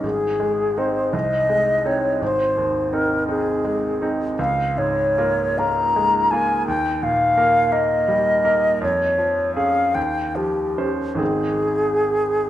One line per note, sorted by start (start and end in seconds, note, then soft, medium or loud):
0.03 1.10 G#1 soft
0.03 0.80 G#4 soft
0.40 0.99 G#3 soft
0.78 1.10 C4 soft
0.78 1.10 D#4 soft
0.78 1.15 C5 soft
1.13 2.18 C2 soft
1.13 1.88 D#5 medium
1.49 2.07 G#3 soft
1.85 2.18 C4 soft
1.85 2.18 D#4 soft
1.85 2.22 C#5 soft
2.22 4.34 G#1 soft
2.22 2.95 C5 medium
2.57 3.14 D#2 soft
2.92 3.25 C4 soft
2.92 3.25 D#4 soft
2.92 3.28 A#4 soft
3.29 3.61 C4 soft
3.29 3.61 D#4 soft
3.29 4.09 G#4 medium
3.65 4.23 G#3 soft
4.02 4.35 C4 soft
4.02 4.35 D#4 soft
4.39 6.63 C#2 soft
4.39 4.79 F5 medium
4.78 5.43 G#2 soft
4.78 5.60 C#5 medium
5.18 5.54 A#3 soft
5.18 5.54 F4 soft
5.59 5.92 A#3 soft
5.59 5.93 F4 soft
5.59 6.33 A#5 medium
5.96 6.53 G#3 soft
6.31 6.64 A#3 soft
6.31 6.64 F4 soft
6.31 6.67 G#5 medium
6.67 8.79 D#2 soft
6.67 7.05 G5 medium
7.03 7.59 A#2 soft
7.03 7.74 F5 medium
7.37 7.69 A#3 soft
7.37 7.69 A#4 soft
7.72 8.04 A#3 soft
7.72 8.04 A#4 soft
7.72 8.82 D#5 medium
8.08 8.67 G3 soft
8.44 8.78 A#3 soft
8.44 8.78 A#4 soft
8.81 9.92 F2 soft
8.81 9.55 C#5 medium
9.18 9.79 F3 soft
9.56 9.92 C#4 soft
9.56 9.92 G#4 soft
9.56 9.96 F5 soft
9.95 11.16 D#2 soft
9.95 10.37 G5 medium
10.35 11.02 F3 soft
10.35 10.90 G4 soft
10.78 11.16 C#4 soft
10.78 11.16 C5 soft
11.14 12.50 G#1 soft
11.14 12.50 D#3 soft
11.14 12.50 C4 soft
11.14 12.50 G#4 soft
11.21 12.50 G#4 soft